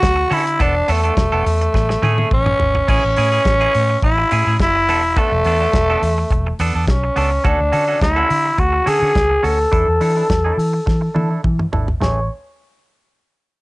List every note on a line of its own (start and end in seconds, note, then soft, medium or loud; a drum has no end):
0.00 0.23 D2 loud
0.00 0.34 F#4 loud
0.00 muted clean electric guitar stroke soft
0.00 kick loud
0.00 snare loud
0.00 closed hi-hat medium
0.16 muted clean electric guitar stroke medium
0.31 0.62 D3 loud
0.31 0.45 C#4 medium
0.31 0.63 E4 loud
0.31 0.45 F#4 medium
0.31 0.44 A4 medium
0.31 open hi-hat medium
0.45 muted clean electric guitar stroke medium
0.45 closed hi-hat medium
0.60 0.81 E1 loud
0.60 0.74 B3 medium
0.60 0.74 D4 loud
0.60 0.93 D4 loud
0.60 0.75 A4 loud
0.60 kick loud
0.60 closed hi-hat medium
0.88 1.09 E2 loud
0.88 2.32 A3 medium
0.88 0.99 B3 medium
0.88 1.00 D4 medium
0.88 1.00 A4 medium
0.88 open hi-hat medium
1.04 1.14 B3 soft
1.04 1.14 D4 medium
1.04 1.13 A4 medium
1.04 closed hi-hat soft
1.17 1.28 E1 medium
1.17 muted clean electric guitar stroke soft
1.17 kick loud
1.17 snare loud
1.17 closed hi-hat medium
1.32 1.42 E1 medium
1.32 1.45 B3 medium
1.32 1.45 D4 medium
1.32 1.45 A4 medium
1.46 1.67 E2 loud
1.46 muted clean electric guitar stroke soft
1.46 open hi-hat medium
1.62 muted clean electric guitar stroke soft
1.62 closed hi-hat soft
1.74 1.95 A1 medium
1.74 muted clean electric guitar stroke soft
1.74 kick loud
1.74 snare medium
1.89 muted clean electric guitar stroke medium
1.89 snare medium
2.02 2.23 A2 loud
2.02 2.17 A3 loud
2.02 2.17 C#4 medium
2.02 2.17 G#4 loud
2.02 high tom medium
2.18 2.28 A3 soft
2.18 2.28 C#4 medium
2.18 2.28 G#4 medium
2.18 high tom medium
2.31 2.52 A1 loud
2.31 2.85 C#4 loud
2.31 kick loud
2.31 mid tom medium
2.46 muted clean electric guitar stroke soft
2.46 mid tom loud
2.60 2.81 G#1 medium
2.60 floor tom loud
2.75 muted clean electric guitar stroke medium
2.75 floor tom medium
2.88 2.99 A1 medium
2.88 3.02 C#4 medium
2.88 3.99 C#4 loud
2.88 3.03 E4 medium
2.88 3.03 G#4 loud
2.88 kick loud
2.88 crash medium
3.04 3.14 A1 medium
3.17 3.38 A2 loud
3.17 3.28 C#4 medium
3.17 3.28 E4 medium
3.17 3.29 G#4 medium
3.17 open hi-hat medium
3.32 3.43 C#4 soft
3.32 3.42 E4 medium
3.32 3.42 G#4 medium
3.45 3.66 A1 loud
3.45 muted clean electric guitar stroke soft
3.45 kick loud
3.45 snare loud
3.45 closed hi-hat medium
3.61 3.74 C#4 medium
3.61 3.73 E4 medium
3.61 3.73 G#4 medium
3.75 3.95 A2 loud
3.75 muted clean electric guitar stroke soft
3.75 open hi-hat medium
3.90 muted clean electric guitar stroke soft
4.02 4.23 A1 loud
4.02 4.57 E4 loud
4.02 muted clean electric guitar stroke soft
4.02 kick loud
4.02 closed hi-hat medium
4.18 muted clean electric guitar stroke soft
4.31 4.42 A2 loud
4.31 4.45 C#4 medium
4.31 4.45 E4 loud
4.31 4.46 G#4 medium
4.31 open hi-hat medium
4.47 4.56 A2 loud
4.47 4.57 C#4 medium
4.47 4.56 E4 soft
4.47 4.56 G#4 medium
4.60 4.89 F#1 loud
4.60 5.20 E4 loud
4.60 muted clean electric guitar stroke soft
4.60 kick loud
4.60 snare loud
4.60 closed hi-hat medium
4.76 muted clean electric guitar stroke soft
4.89 5.20 E1 loud
4.89 5.02 B3 medium
4.89 5.03 D4 medium
4.89 5.02 A4 loud
4.89 open hi-hat medium
5.04 muted clean electric guitar stroke medium
5.16 6.62 A3 loud
5.16 5.31 B3 medium
5.16 5.31 D4 medium
5.16 5.31 A4 loud
5.16 kick loud
5.16 closed hi-hat medium
5.32 5.42 E1 loud
5.45 5.66 E2 loud
5.45 5.56 B3 medium
5.45 5.57 D4 medium
5.45 5.57 A4 medium
5.45 open hi-hat medium
5.61 5.71 B3 medium
5.61 5.71 D4 medium
5.61 5.70 A4 medium
5.73 5.94 E1 loud
5.73 kick loud
5.73 snare loud
5.73 closed hi-hat medium
5.90 6.02 B3 medium
5.90 6.02 D4 medium
5.90 6.02 A4 medium
6.02 6.23 E2 loud
6.02 muted clean electric guitar stroke soft
6.02 open hi-hat medium
6.18 muted clean electric guitar stroke soft
6.31 6.51 E1 loud
6.31 muted clean electric guitar stroke soft
6.31 kick loud
6.31 closed hi-hat medium
6.47 muted clean electric guitar stroke soft
6.59 6.70 E2 loud
6.59 6.74 B3 medium
6.59 6.74 D4 medium
6.59 6.74 A4 medium
6.59 open hi-hat medium
6.75 6.84 E2 medium
6.75 6.85 B3 soft
6.75 6.85 D4 medium
6.75 6.85 A4 medium
6.87 7.08 B1 medium
6.87 7.48 C#4 medium
6.87 muted clean electric guitar stroke medium
6.87 kick loud
6.87 snare loud
6.87 closed hi-hat medium
7.04 muted clean electric guitar stroke soft
7.16 7.37 C#2 loud
7.16 7.30 B3 medium
7.16 7.31 D4 loud
7.16 7.30 A4 loud
7.16 open hi-hat medium
7.31 muted clean electric guitar stroke soft
7.44 7.56 D2 loud
7.44 7.58 C#4 medium
7.44 8.02 D4 loud
7.44 7.59 F#4 loud
7.44 7.59 A4 loud
7.44 kick loud
7.44 closed hi-hat medium
7.60 7.70 D2 loud
7.72 7.94 D3 loud
7.72 7.84 C#4 medium
7.72 7.84 F#4 medium
7.72 7.84 A4 medium
7.72 open hi-hat medium
7.88 7.98 C#4 medium
7.88 7.98 F#4 medium
7.88 7.98 A4 medium
8.01 8.22 D2 loud
8.01 8.61 E4 loud
8.01 muted clean electric guitar stroke soft
8.01 kick loud
8.01 snare loud
8.01 closed hi-hat medium
8.16 8.29 C#4 medium
8.16 8.29 F#4 medium
8.16 8.29 A4 medium
8.30 8.51 D3 medium
8.30 muted clean electric guitar stroke soft
8.30 open hi-hat medium
8.45 muted clean electric guitar stroke soft
8.58 8.79 D2 loud
8.58 8.90 F#4 loud
8.58 muted clean electric guitar stroke soft
8.58 kick loud
8.58 closed hi-hat medium
8.73 muted clean electric guitar stroke soft
8.86 8.98 D3 loud
8.86 9.01 C#4 medium
8.86 9.01 F#4 medium
8.86 9.47 G#4 loud
8.86 9.00 A4 loud
8.86 open hi-hat medium
9.01 9.12 D3 loud
9.01 9.12 C#4 medium
9.01 9.12 F#4 medium
9.01 9.11 A4 medium
9.15 9.36 C#2 medium
9.15 muted clean electric guitar stroke soft
9.15 kick loud
9.15 snare loud
9.15 closed hi-hat medium
9.30 muted clean electric guitar stroke soft
9.43 9.65 D2 medium
9.43 9.58 C#4 medium
9.43 9.58 F#4 loud
9.43 9.58 A4 medium
9.43 11.44 A4 loud
9.43 open hi-hat medium
9.72 9.84 E2 medium
9.72 9.86 D4 medium
9.72 9.87 E4 medium
9.72 9.87 A4 loud
9.72 kick loud
9.72 closed hi-hat medium
9.88 9.98 E2 medium
10.01 10.22 E3 loud
10.01 10.12 D4 medium
10.01 10.12 E4 medium
10.01 10.13 A4 medium
10.01 open hi-hat medium
10.16 10.27 D4 medium
10.16 10.26 E4 medium
10.16 10.26 A4 medium
10.30 10.50 E2 loud
10.30 kick loud
10.30 snare loud
10.30 closed hi-hat medium
10.45 10.57 D4 medium
10.45 10.57 E4 medium
10.45 10.58 A4 medium
10.58 10.78 E3 loud
10.58 muted clean electric guitar stroke soft
10.58 open hi-hat medium
10.73 muted clean electric guitar stroke soft
10.86 11.08 E3 medium
10.86 muted clean electric guitar stroke soft
10.86 kick loud
10.86 snare medium
11.01 muted clean electric guitar stroke soft
11.15 11.36 E3 loud
11.15 11.29 D4 medium
11.15 11.30 E4 medium
11.15 11.29 A4 loud
11.15 high tom medium
11.30 11.40 D4 soft
11.30 11.40 E4 medium
11.30 11.40 A4 medium
11.44 11.65 E3 loud
11.44 kick loud
11.44 mid tom medium
11.59 muted clean electric guitar stroke medium
11.59 mid tom medium
11.72 11.93 G#1 medium
11.72 11.87 D4 medium
11.72 11.87 E4 medium
11.72 11.87 A4 medium
11.72 floor tom loud
11.88 muted clean electric guitar stroke soft
11.88 floor tom medium
12.00 12.27 A1 medium
12.00 12.19 A3 medium
12.00 12.19 C#4 loud
12.00 12.19 G#4 medium
12.00 12.28 C#5 loud
12.00 snare medium
12.00 floor tom loud